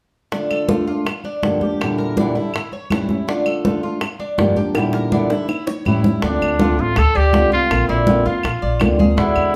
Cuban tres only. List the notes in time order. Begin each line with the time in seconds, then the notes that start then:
0.32 D4
0.50 A4
0.87 F4
1.25 D4
1.61 G4
1.98 A#4
2.17 D4
2.35 E4
2.73 C#5
2.91 E4
3.28 D4
3.46 A4
3.83 F4
4.20 D4
4.57 G4
4.94 A#4
5.12 D4
5.30 E4
5.67 C#5
5.85 E4
6.23 D4
6.59 F4
6.96 A4
7.15 D5
7.52 F4
7.89 D4
8.26 F4
8.62 D5
8.99 G#4
9.17 D4